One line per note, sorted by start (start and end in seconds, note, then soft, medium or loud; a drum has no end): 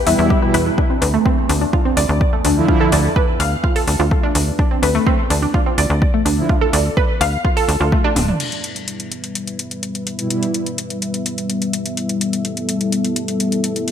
0.00 8.45 E2 medium
0.07 0.15 E2 medium
0.07 0.29 B2 medium
0.07 0.29 G3 medium
0.07 0.29 E4 medium
0.07 0.16 E5 medium
0.07 open hi-hat loud
0.19 0.35 E2 medium
0.19 0.22 E5 medium
0.30 0.37 G4 loud
0.30 kick loud
0.42 0.56 B2 medium
0.42 0.56 G3 medium
0.42 0.56 E4 medium
0.42 0.49 B4 medium
0.54 0.71 E2 medium
0.54 0.64 B4 loud
0.54 open hi-hat loud
0.66 0.76 E4 medium
0.78 0.85 D4 medium
0.78 kick loud
0.90 0.94 C4 medium
1.02 1.19 D2 loud
1.02 1.08 B4 medium
1.02 open hi-hat loud
1.14 1.18 A3 loud
1.25 1.30 C4 loud
1.25 kick loud
1.49 1.66 D2 loud
1.49 1.56 D4 medium
1.49 open hi-hat loud
1.61 1.68 D4 medium
1.73 1.80 F4 medium
1.73 kick loud
1.85 1.89 C4 medium
1.97 2.05 D2 medium
1.97 2.01 D5 medium
1.97 open hi-hat loud
2.09 2.26 D2 medium
2.21 kick loud
2.33 2.39 A3 medium
2.45 2.61 D2 medium
2.45 2.51 D4 medium
2.45 open hi-hat loud
2.57 2.66 D3 medium
2.57 2.66 F3 medium
2.57 2.66 E4 loud
2.68 2.83 D3 medium
2.68 2.83 F3 medium
2.68 2.83 E4 loud
2.68 2.75 F4 medium
2.68 kick loud
2.81 2.87 A4 loud
2.92 3.09 D2 medium
2.92 2.96 D5 medium
2.92 open hi-hat loud
3.16 3.20 B4 loud
3.16 kick loud
3.40 3.57 D2 loud
3.40 3.44 F5 loud
3.40 open hi-hat loud
3.64 3.70 F4 medium
3.64 kick loud
3.76 3.82 A4 loud
3.76 open hi-hat medium
3.88 3.96 D2 medium
3.88 open hi-hat loud
4.00 4.16 D2 medium
4.00 4.06 F4 medium
4.11 4.15 A3 medium
4.11 kick loud
4.23 4.27 D4 loud
4.35 4.52 D2 medium
4.35 open hi-hat loud
4.59 4.66 D4 medium
4.59 kick loud
4.71 4.75 C4 medium
4.83 4.99 D2 medium
4.83 4.89 B4 medium
4.83 open hi-hat loud
4.95 4.99 A3 loud
5.07 5.10 C4 loud
5.07 kick loud
5.30 5.47 D2 loud
5.30 5.37 D4 medium
5.30 open hi-hat loud
5.42 5.49 D4 medium
5.54 5.61 F4 medium
5.54 kick loud
5.66 5.70 C4 medium
5.78 5.86 D2 medium
5.78 5.82 D5 medium
5.78 open hi-hat medium
5.90 6.06 D2 medium
6.02 kick loud
6.14 6.20 A3 medium
6.25 6.42 D2 medium
6.25 6.32 D4 medium
6.25 open hi-hat loud
6.38 6.47 D3 medium
6.38 6.47 F3 medium
6.38 6.47 E4 loud
6.49 6.56 F4 medium
6.49 kick loud
6.61 6.68 A4 loud
6.73 6.90 D2 loud
6.73 6.77 D5 medium
6.73 open hi-hat loud
6.97 7.01 B4 loud
6.97 kick loud
7.21 7.37 D2 loud
7.21 7.25 F5 loud
7.21 open hi-hat loud
7.45 7.51 F4 medium
7.45 kick loud
7.57 7.63 A4 loud
7.57 open hi-hat medium
7.68 7.77 D2 loud
7.68 open hi-hat loud
7.81 7.97 D2 medium
7.81 7.87 F4 medium
7.92 7.96 A3 medium
7.92 kick loud
8.04 8.08 D4 loud
8.04 high tom medium
8.16 8.33 D1 medium
8.16 open hi-hat loud
8.16 mid tom medium
8.28 mid tom medium
8.40 13.91 G3 medium
8.40 13.91 B3 medium
8.40 13.91 E4 medium
8.40 12.17 B4 medium
8.40 13.91 E5 medium
8.40 closed hi-hat medium
8.40 crash medium
8.52 closed hi-hat soft
8.64 closed hi-hat medium
8.76 closed hi-hat soft
8.88 closed hi-hat medium
9.00 closed hi-hat soft
9.12 closed hi-hat medium
9.24 closed hi-hat soft
9.35 closed hi-hat medium
9.47 closed hi-hat soft
9.59 closed hi-hat medium
9.71 closed hi-hat soft
9.83 closed hi-hat medium
9.95 closed hi-hat soft
10.07 closed hi-hat medium
10.19 10.28 B2 medium
10.19 10.28 G3 medium
10.19 10.28 E4 loud
10.19 closed hi-hat soft
10.30 10.45 B2 medium
10.30 10.45 G3 medium
10.30 10.45 E4 loud
10.30 closed hi-hat medium
10.43 closed hi-hat soft
10.54 closed hi-hat medium
10.66 closed hi-hat soft
10.78 closed hi-hat medium
10.90 closed hi-hat soft
11.02 closed hi-hat medium
11.14 closed hi-hat soft
11.26 closed hi-hat medium
11.38 closed hi-hat soft
11.50 closed hi-hat medium
11.62 closed hi-hat soft
11.73 closed hi-hat medium
11.86 closed hi-hat soft
11.97 closed hi-hat medium
12.09 closed hi-hat soft
12.21 13.91 A4 medium
12.21 closed hi-hat medium
12.33 closed hi-hat soft
12.45 closed hi-hat soft
12.57 closed hi-hat soft
12.69 closed hi-hat medium
12.81 closed hi-hat soft
12.92 closed hi-hat medium
13.05 closed hi-hat soft
13.16 closed hi-hat medium
13.28 closed hi-hat soft
13.40 closed hi-hat medium
13.52 closed hi-hat soft
13.64 closed hi-hat medium
13.76 closed hi-hat soft
13.88 closed hi-hat soft